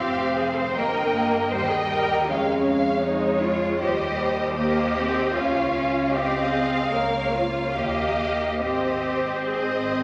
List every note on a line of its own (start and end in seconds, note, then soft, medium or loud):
0.00 0.75 F1 medium
0.00 0.73 C4 medium
0.00 0.37 G4 medium
0.00 0.76 C5 medium
0.00 0.75 F5 medium
0.37 0.56 G#4 medium
0.56 0.76 C5 medium
0.75 1.50 G1 medium
0.75 1.13 A#3 medium
0.75 1.52 A#4 medium
0.75 1.51 D#5 medium
0.75 1.50 G5 medium
1.15 1.52 A#3 medium
1.51 2.29 D#2 medium
1.51 2.28 G3 medium
1.51 1.71 C5 medium
1.51 2.27 D#5 medium
1.51 2.27 G5 medium
1.70 1.90 G#4 medium
1.89 2.27 A#4 loud
2.28 3.82 F2 medium
2.28 3.05 G#3 medium
2.28 3.05 C#4 medium
2.28 3.05 C#5 medium
2.28 2.65 F5 medium
2.67 3.04 F5 medium
3.04 3.81 G#3 medium
3.04 3.42 D#4 medium
3.04 3.81 C#5 medium
3.04 3.80 C#5 medium
3.44 3.82 F4 medium
3.81 5.34 D#2 medium
3.81 4.58 G3 medium
3.81 4.56 G4 medium
3.81 4.20 C5 medium
3.81 4.56 D#5 medium
4.21 5.33 C5 medium
4.57 4.96 A#3 medium
4.57 5.33 G4 medium
4.57 5.32 D#5 medium
4.99 5.36 C4 medium
5.34 6.90 C#2 medium
5.34 5.74 C#4 medium
5.34 6.11 F4 medium
5.34 6.12 C#5 medium
5.34 6.13 F5 medium
5.75 6.13 C#4 medium
6.12 6.93 C4 medium
6.12 6.52 G4 medium
6.12 6.91 D#5 medium
6.12 7.75 F5 medium
6.52 6.91 G#4 medium
6.91 7.73 C#2 medium
6.91 7.74 A#3 medium
6.91 7.32 A#4 medium
6.91 7.75 C#5 medium
7.33 7.75 F4 medium
7.74 8.60 D#2 medium
7.74 8.60 A#3 medium
7.74 8.60 G4 medium
7.74 8.61 D#5 medium
7.74 8.60 F5 medium
8.61 10.03 G#1 medium
8.61 10.03 C4 medium
8.61 9.46 G4 medium
8.61 10.03 C5 medium
8.61 9.39 D#5 soft
9.48 10.03 G#4 medium
9.48 10.03 D#5 medium